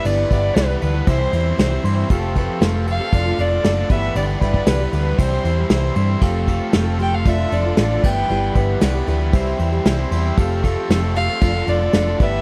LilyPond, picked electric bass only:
\new Staff \with { instrumentName = "Picked electric bass" } { \clef bass \time 4/4 \key c \major \tempo 4 = 116 g,,8 g,,8 c,8 d,8 c,8 e,8 c,8 g,8 | f,,4 f,,4 f,,8 f,,8 fis,,8 g,,8 | g,,8 g,,8 c,8 d,8 c,8 e,8 c,8 g,8 | f,,4 f,,4 f,,8 f,,8 a,,8 g,,8 |
g,,8 g,,8 c,8 d,8 c,8 e,8 c,8 e,8 | f,,4 f,,4 f,,8 f,,8 f,,8 g,,8 | }